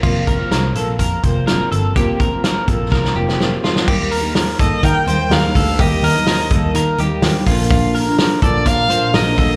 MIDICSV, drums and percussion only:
0, 0, Header, 1, 2, 480
1, 0, Start_track
1, 0, Tempo, 479233
1, 34, Time_signature, 4, 2, 24, 8
1, 9576, End_track
2, 0, Start_track
2, 0, Title_t, "Drums"
2, 33, Note_on_c, 9, 36, 112
2, 35, Note_on_c, 9, 49, 92
2, 133, Note_off_c, 9, 36, 0
2, 135, Note_off_c, 9, 49, 0
2, 274, Note_on_c, 9, 36, 93
2, 279, Note_on_c, 9, 42, 75
2, 374, Note_off_c, 9, 36, 0
2, 379, Note_off_c, 9, 42, 0
2, 517, Note_on_c, 9, 38, 111
2, 523, Note_on_c, 9, 42, 87
2, 617, Note_off_c, 9, 38, 0
2, 623, Note_off_c, 9, 42, 0
2, 755, Note_on_c, 9, 42, 75
2, 855, Note_off_c, 9, 42, 0
2, 994, Note_on_c, 9, 36, 77
2, 995, Note_on_c, 9, 42, 96
2, 1094, Note_off_c, 9, 36, 0
2, 1096, Note_off_c, 9, 42, 0
2, 1237, Note_on_c, 9, 42, 67
2, 1239, Note_on_c, 9, 36, 87
2, 1337, Note_off_c, 9, 42, 0
2, 1339, Note_off_c, 9, 36, 0
2, 1480, Note_on_c, 9, 38, 106
2, 1481, Note_on_c, 9, 42, 76
2, 1580, Note_off_c, 9, 38, 0
2, 1581, Note_off_c, 9, 42, 0
2, 1724, Note_on_c, 9, 42, 73
2, 1825, Note_off_c, 9, 42, 0
2, 1963, Note_on_c, 9, 36, 112
2, 1966, Note_on_c, 9, 42, 85
2, 2063, Note_off_c, 9, 36, 0
2, 2067, Note_off_c, 9, 42, 0
2, 2203, Note_on_c, 9, 36, 97
2, 2209, Note_on_c, 9, 42, 71
2, 2303, Note_off_c, 9, 36, 0
2, 2309, Note_off_c, 9, 42, 0
2, 2443, Note_on_c, 9, 38, 108
2, 2449, Note_on_c, 9, 42, 99
2, 2543, Note_off_c, 9, 38, 0
2, 2549, Note_off_c, 9, 42, 0
2, 2684, Note_on_c, 9, 36, 93
2, 2684, Note_on_c, 9, 42, 74
2, 2784, Note_off_c, 9, 36, 0
2, 2785, Note_off_c, 9, 42, 0
2, 2924, Note_on_c, 9, 36, 83
2, 2930, Note_on_c, 9, 38, 56
2, 3024, Note_off_c, 9, 36, 0
2, 3030, Note_off_c, 9, 38, 0
2, 3051, Note_on_c, 9, 38, 53
2, 3151, Note_off_c, 9, 38, 0
2, 3293, Note_on_c, 9, 38, 66
2, 3394, Note_off_c, 9, 38, 0
2, 3411, Note_on_c, 9, 38, 94
2, 3511, Note_off_c, 9, 38, 0
2, 3648, Note_on_c, 9, 38, 92
2, 3748, Note_off_c, 9, 38, 0
2, 3766, Note_on_c, 9, 38, 99
2, 3867, Note_off_c, 9, 38, 0
2, 3883, Note_on_c, 9, 49, 100
2, 3884, Note_on_c, 9, 36, 115
2, 3983, Note_off_c, 9, 49, 0
2, 3985, Note_off_c, 9, 36, 0
2, 4122, Note_on_c, 9, 44, 69
2, 4126, Note_on_c, 9, 46, 77
2, 4223, Note_off_c, 9, 44, 0
2, 4226, Note_off_c, 9, 46, 0
2, 4359, Note_on_c, 9, 38, 120
2, 4359, Note_on_c, 9, 44, 63
2, 4365, Note_on_c, 9, 46, 99
2, 4459, Note_off_c, 9, 38, 0
2, 4459, Note_off_c, 9, 44, 0
2, 4465, Note_off_c, 9, 46, 0
2, 4601, Note_on_c, 9, 44, 71
2, 4601, Note_on_c, 9, 46, 80
2, 4602, Note_on_c, 9, 36, 102
2, 4701, Note_off_c, 9, 46, 0
2, 4702, Note_off_c, 9, 36, 0
2, 4702, Note_off_c, 9, 44, 0
2, 4840, Note_on_c, 9, 36, 88
2, 4841, Note_on_c, 9, 46, 116
2, 4843, Note_on_c, 9, 44, 62
2, 4940, Note_off_c, 9, 36, 0
2, 4941, Note_off_c, 9, 46, 0
2, 4943, Note_off_c, 9, 44, 0
2, 5081, Note_on_c, 9, 46, 78
2, 5083, Note_on_c, 9, 44, 67
2, 5181, Note_off_c, 9, 46, 0
2, 5183, Note_off_c, 9, 44, 0
2, 5320, Note_on_c, 9, 44, 68
2, 5321, Note_on_c, 9, 38, 121
2, 5322, Note_on_c, 9, 46, 83
2, 5420, Note_off_c, 9, 44, 0
2, 5421, Note_off_c, 9, 38, 0
2, 5423, Note_off_c, 9, 46, 0
2, 5562, Note_on_c, 9, 36, 96
2, 5563, Note_on_c, 9, 44, 62
2, 5565, Note_on_c, 9, 46, 77
2, 5662, Note_off_c, 9, 36, 0
2, 5663, Note_off_c, 9, 44, 0
2, 5665, Note_off_c, 9, 46, 0
2, 5800, Note_on_c, 9, 36, 118
2, 5800, Note_on_c, 9, 44, 67
2, 5801, Note_on_c, 9, 46, 88
2, 5900, Note_off_c, 9, 36, 0
2, 5901, Note_off_c, 9, 44, 0
2, 5901, Note_off_c, 9, 46, 0
2, 6042, Note_on_c, 9, 44, 72
2, 6045, Note_on_c, 9, 46, 80
2, 6142, Note_off_c, 9, 44, 0
2, 6145, Note_off_c, 9, 46, 0
2, 6277, Note_on_c, 9, 38, 118
2, 6277, Note_on_c, 9, 44, 66
2, 6283, Note_on_c, 9, 46, 101
2, 6377, Note_off_c, 9, 38, 0
2, 6377, Note_off_c, 9, 44, 0
2, 6383, Note_off_c, 9, 46, 0
2, 6516, Note_on_c, 9, 46, 79
2, 6517, Note_on_c, 9, 44, 71
2, 6518, Note_on_c, 9, 36, 106
2, 6616, Note_off_c, 9, 46, 0
2, 6617, Note_off_c, 9, 44, 0
2, 6618, Note_off_c, 9, 36, 0
2, 6756, Note_on_c, 9, 46, 111
2, 6759, Note_on_c, 9, 44, 63
2, 6856, Note_off_c, 9, 46, 0
2, 6859, Note_off_c, 9, 44, 0
2, 6994, Note_on_c, 9, 46, 71
2, 6996, Note_on_c, 9, 44, 63
2, 7094, Note_off_c, 9, 46, 0
2, 7096, Note_off_c, 9, 44, 0
2, 7234, Note_on_c, 9, 44, 70
2, 7235, Note_on_c, 9, 38, 123
2, 7236, Note_on_c, 9, 46, 84
2, 7334, Note_off_c, 9, 44, 0
2, 7335, Note_off_c, 9, 38, 0
2, 7336, Note_off_c, 9, 46, 0
2, 7475, Note_on_c, 9, 44, 72
2, 7477, Note_on_c, 9, 46, 80
2, 7478, Note_on_c, 9, 36, 93
2, 7575, Note_off_c, 9, 44, 0
2, 7577, Note_off_c, 9, 46, 0
2, 7578, Note_off_c, 9, 36, 0
2, 7716, Note_on_c, 9, 44, 66
2, 7717, Note_on_c, 9, 46, 88
2, 7718, Note_on_c, 9, 36, 121
2, 7816, Note_off_c, 9, 44, 0
2, 7817, Note_off_c, 9, 46, 0
2, 7818, Note_off_c, 9, 36, 0
2, 7960, Note_on_c, 9, 44, 67
2, 7963, Note_on_c, 9, 46, 77
2, 8060, Note_off_c, 9, 44, 0
2, 8063, Note_off_c, 9, 46, 0
2, 8199, Note_on_c, 9, 38, 116
2, 8199, Note_on_c, 9, 44, 69
2, 8205, Note_on_c, 9, 46, 90
2, 8299, Note_off_c, 9, 38, 0
2, 8299, Note_off_c, 9, 44, 0
2, 8305, Note_off_c, 9, 46, 0
2, 8435, Note_on_c, 9, 46, 84
2, 8436, Note_on_c, 9, 36, 98
2, 8436, Note_on_c, 9, 44, 67
2, 8535, Note_off_c, 9, 46, 0
2, 8536, Note_off_c, 9, 36, 0
2, 8536, Note_off_c, 9, 44, 0
2, 8671, Note_on_c, 9, 46, 115
2, 8673, Note_on_c, 9, 36, 87
2, 8673, Note_on_c, 9, 44, 62
2, 8771, Note_off_c, 9, 46, 0
2, 8773, Note_off_c, 9, 36, 0
2, 8774, Note_off_c, 9, 44, 0
2, 8913, Note_on_c, 9, 46, 77
2, 8915, Note_on_c, 9, 44, 71
2, 9013, Note_off_c, 9, 46, 0
2, 9015, Note_off_c, 9, 44, 0
2, 9153, Note_on_c, 9, 44, 70
2, 9154, Note_on_c, 9, 38, 118
2, 9155, Note_on_c, 9, 46, 80
2, 9253, Note_off_c, 9, 44, 0
2, 9254, Note_off_c, 9, 38, 0
2, 9255, Note_off_c, 9, 46, 0
2, 9394, Note_on_c, 9, 44, 65
2, 9395, Note_on_c, 9, 36, 98
2, 9396, Note_on_c, 9, 46, 78
2, 9494, Note_off_c, 9, 44, 0
2, 9495, Note_off_c, 9, 36, 0
2, 9496, Note_off_c, 9, 46, 0
2, 9576, End_track
0, 0, End_of_file